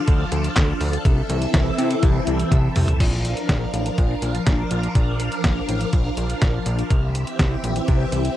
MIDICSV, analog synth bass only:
0, 0, Header, 1, 2, 480
1, 0, Start_track
1, 0, Tempo, 487805
1, 1035, Time_signature, 4, 2, 24, 8
1, 8234, End_track
2, 0, Start_track
2, 0, Title_t, "Analog synth bass"
2, 0, Program_c, 0, 38
2, 78, Note_on_c, 0, 38, 117
2, 245, Note_off_c, 0, 38, 0
2, 314, Note_on_c, 0, 38, 105
2, 482, Note_off_c, 0, 38, 0
2, 556, Note_on_c, 0, 38, 110
2, 724, Note_off_c, 0, 38, 0
2, 794, Note_on_c, 0, 38, 106
2, 962, Note_off_c, 0, 38, 0
2, 1035, Note_on_c, 0, 36, 106
2, 1203, Note_off_c, 0, 36, 0
2, 1275, Note_on_c, 0, 36, 111
2, 1443, Note_off_c, 0, 36, 0
2, 1514, Note_on_c, 0, 36, 97
2, 1682, Note_off_c, 0, 36, 0
2, 1755, Note_on_c, 0, 48, 99
2, 1923, Note_off_c, 0, 48, 0
2, 1998, Note_on_c, 0, 36, 112
2, 2165, Note_off_c, 0, 36, 0
2, 2235, Note_on_c, 0, 36, 97
2, 2403, Note_off_c, 0, 36, 0
2, 2476, Note_on_c, 0, 36, 109
2, 2644, Note_off_c, 0, 36, 0
2, 2715, Note_on_c, 0, 36, 100
2, 2883, Note_off_c, 0, 36, 0
2, 2954, Note_on_c, 0, 34, 107
2, 3291, Note_off_c, 0, 34, 0
2, 3434, Note_on_c, 0, 34, 98
2, 3603, Note_off_c, 0, 34, 0
2, 3675, Note_on_c, 0, 33, 89
2, 3843, Note_off_c, 0, 33, 0
2, 3918, Note_on_c, 0, 34, 100
2, 4085, Note_off_c, 0, 34, 0
2, 4156, Note_on_c, 0, 34, 103
2, 4324, Note_off_c, 0, 34, 0
2, 4396, Note_on_c, 0, 34, 104
2, 4563, Note_off_c, 0, 34, 0
2, 4636, Note_on_c, 0, 34, 98
2, 4804, Note_off_c, 0, 34, 0
2, 4874, Note_on_c, 0, 34, 103
2, 5210, Note_off_c, 0, 34, 0
2, 5354, Note_on_c, 0, 34, 103
2, 5523, Note_off_c, 0, 34, 0
2, 5596, Note_on_c, 0, 33, 91
2, 5763, Note_off_c, 0, 33, 0
2, 5838, Note_on_c, 0, 34, 105
2, 6005, Note_off_c, 0, 34, 0
2, 6076, Note_on_c, 0, 34, 97
2, 6243, Note_off_c, 0, 34, 0
2, 6316, Note_on_c, 0, 34, 106
2, 6484, Note_off_c, 0, 34, 0
2, 6556, Note_on_c, 0, 34, 97
2, 6724, Note_off_c, 0, 34, 0
2, 6794, Note_on_c, 0, 36, 104
2, 7131, Note_off_c, 0, 36, 0
2, 7274, Note_on_c, 0, 36, 103
2, 7443, Note_off_c, 0, 36, 0
2, 7515, Note_on_c, 0, 34, 97
2, 7683, Note_off_c, 0, 34, 0
2, 7758, Note_on_c, 0, 36, 111
2, 7925, Note_off_c, 0, 36, 0
2, 7995, Note_on_c, 0, 36, 90
2, 8163, Note_off_c, 0, 36, 0
2, 8234, End_track
0, 0, End_of_file